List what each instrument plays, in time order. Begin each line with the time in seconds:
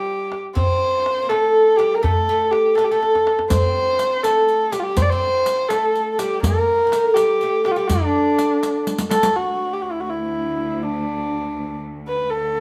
Already playing: oud G3, kamancheh G4
0.32 tombak tek
0.55 oud C4, kamancheh C5, tombak dum
0.82 tombak ka
1.06 tombak tek
1.23 oud A#3
1.29 oud A3, kamancheh A4, tombak tek
1.78 oud G3, kamancheh G4, tombak tek
1.95 kamancheh A#4
2.02 oud A3, kamancheh A4, tombak dum
2.28 oud A3, tombak ka
2.51 kamancheh G4, tombak tek
2.75 oud G3 A3, kamancheh A4, tombak tek
2.84 kamancheh G4
2.91 oud A3, kamancheh A4
3.03 tombak tek
3.15 tombak ka
3.27 tombak tek
3.39 tombak ka
3.50 oud C4, kamancheh C5, riq, tombak dum
3.75 tombak ka
3.99 riq, tombak tek
4.23 oud A3, kamancheh A4, riq, tombak tek
4.49 riq
4.72 oud G3, kamancheh G4, riq, tombak tek
4.79 kamancheh F4 G4
4.97 oud C4, kamancheh C5, riq, tombak dum
5.02 kamancheh D5
5.10 oud C4, kamancheh C5
5.22 tombak ka
5.46 riq, tombak tek
5.69 oud A3, kamancheh A4, riq, tombak tek
5.95 riq
6.12 kamancheh A4
6.19 oud G3, kamancheh G4, riq, tombak tek
6.43 oud A#3, kamancheh A#4, riq, tombak dum
6.87 oud G3
6.92 oud A3, riq, tombak tek
7.14 kamancheh G4, riq, tombak tek
7.19 oud G3
7.41 oud A3, riq
7.65 oud G3, kamancheh G4, tombak tek
7.72 kamancheh F4
7.76 oud G3, kamancheh G4
7.88 oud D3, kamancheh D4, riq, tombak dum
8.38 riq, tombak tek
8.63 riq, tombak tek
8.87 riq, tombak tek
8.98 riq, tombak ka
9.11 kamancheh A4, riq, tombak tek
9.23 riq, tombak ka
9.36 cello section D2, kamancheh F#4
9.73 kamancheh G4
9.82 kamancheh F#4
9.92 kamancheh E4
10.00 kamancheh F#4
10.10 kamancheh E4
10.83 kamancheh D4
12.08 kamancheh B4
12.29 cello section D2, kamancheh A4